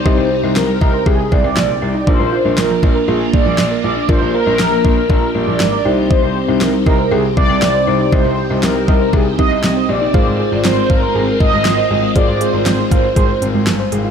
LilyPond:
<<
  \new Staff \with { instrumentName = "Analog polysynth" } { \time 4/4 \key c \minor \tempo 4 = 119 c''4 bes'8 bes'8 aes'8 d''4. | c''4 bes'4 aes'8 d''4 d''8 | c''8 bes'2 d''4. | c''4 bes'8 bes'8 aes'8 d''4. |
c''4 bes'8 bes'8 aes'8 ees''4 d''8~ | d''4 c''8 bes'4 ees''4. | d''8 c''4 c''2 r8 | }
  \new Staff \with { instrumentName = "Synth keys" } { \time 4/4 \key c \minor <ees' g' c''>1 | <d' f' bes'>1 | <d' f' bes'>2 <d' f' bes'>4. <ees' g' c''>8~ | <ees' g' c''>2.~ <ees' g' c''>8 <ees' g' c''>8~ |
<ees' g' c''>2~ <ees' g' c''>8 <ees' g' ees''>4. | <f' aes' c''>1 | <f' aes' c''>1 | }
  \new Staff \with { instrumentName = "Synth pluck" } { \time 4/4 \key c \minor ees''16 c''16 g'16 ees'16 c'16 g16 ees''16 c''16 g'16 r16 c'16 g16 r16 c''16 g'16 ees'16 | d''16 bes'16 f'16 d'16 bes16 f16 d''16 bes'16 f'16 r16 bes16 f16 r16 bes'16 f'16 d'16 | d''16 bes'16 f'16 d'16 bes16 f16 d''16 bes'16 f'16 r16 bes16 f16 r16 bes'16 g'16 ees'16 | ees''16 c''16 g'16 ees'16 c'16 g16 ees''16 c''16 g'16 r16 c'16 g16 r16 c''16 g'16 ees'16 |
ees''16 c''16 g'16 ees'16 c'16 g16 ees''16 c''16 g'16 r16 c'16 g16 r16 c''16 g'16 ees'16 | f''16 c''16 aes'16 f'16 c'16 aes16 f''16 c''16 aes'16 r16 c'16 aes16 r16 c''16 aes'16 f'16 | f''16 c''16 aes'16 f'16 c'16 aes16 f''16 c''16 aes'16 r16 c'16 aes16 r16 c''16 aes'16 f'16 | }
  \new Staff \with { instrumentName = "String machine" } { \time 4/4 \key c \minor << { g'1 | f'1 | g'1~ | g'1~ |
g'1 | f'1~ | f'1 | } \\ { <c c' ees'>1 | <bes d'>1~ | <bes d'>2.~ <bes d'>8 <c c' ees'>8~ | <c c' ees'>1~ |
<c c' ees'>1 | aes1~ | aes1 | } >> }
  \new Staff \with { instrumentName = "Grand piano" } { \clef bass \time 4/4 \key c \minor c,16 c,16 r16 c,16 c,16 r16 c,16 r16 c,16 r16 c,16 c,16 bes,,16 r16 c,16 r16 | bes,,16 bes,,16 r16 bes,,16 bes,,16 r16 bes,,16 r16 bes,,16 r16 bes,,16 bes,,16 bes,,16 r16 bes,,16 r16 | bes,,16 bes,,16 r16 bes,,16 bes,,16 r16 bes,,16 r16 bes,,16 r16 bes,,16 bes,,16 aes,,16 r16 c,8~ | c,16 c,16 r16 c,16 c,16 r16 c,16 r16 c,16 r16 c,16 c,16 c,16 r16 c,16 r16 |
c,16 c,16 r16 c,16 c,16 r16 c,16 r16 c,16 r16 c,16 c,16 c,16 r16 bes,,16 r16 | aes,,16 aes,,16 r16 aes,,16 aes,,16 r16 aes,,16 r16 aes,,16 r16 aes,,16 aes,,16 aes,,16 r16 aes,,16 r16 | aes,,16 aes,,16 r16 aes,,16 aes,,16 r16 aes,,16 r16 aes,,16 r16 aes,,16 aes,,16 g,,16 r16 aes,,16 r16 | }
  \new DrumStaff \with { instrumentName = "Drums" } \drummode { \time 4/4 bd4 sn8 bd8 bd8 bd8 sn4 | bd4 sn8 bd8 r8 bd8 sn4 | bd4 sn8 bd8 bd4 sn4 | bd4 sn8 bd8 r8 bd8 sn4 |
bd4 sn8 bd8 bd8 bd8 sn4 | bd4 sn8 bd8 r8 bd8 sn4 | <hh bd>8 hh8 <hh sn>8 <hh bd>8 <hh bd>8 hh8 <hh sn>8 hh8 | }
>>